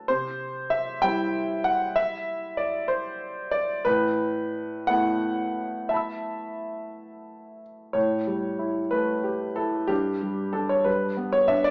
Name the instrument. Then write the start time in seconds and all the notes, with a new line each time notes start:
grand piano
Already playing: A4 B4
0.08 C3 C5
0.70 E5
1.02 G3 C4 E4 G5
1.64 F#5
1.96 E5
2.57 D5
2.88 C5
3.51 D5
3.85 A2 B4
4.87 A3 B3 E4 F#5
5.89 E5 A5
5.94 B5 E6
7.93 A2 C#5
8.27 G3
8.59 E4
8.91 A3 B4
9.24 G4
9.56 E4 A4
9.87 G2 G4
10.22 G3
10.53 D4 A4
10.69 C#5
10.84 G3 B4
11.17 B3
11.33 C#5
11.48 D4 E5
11.64 D5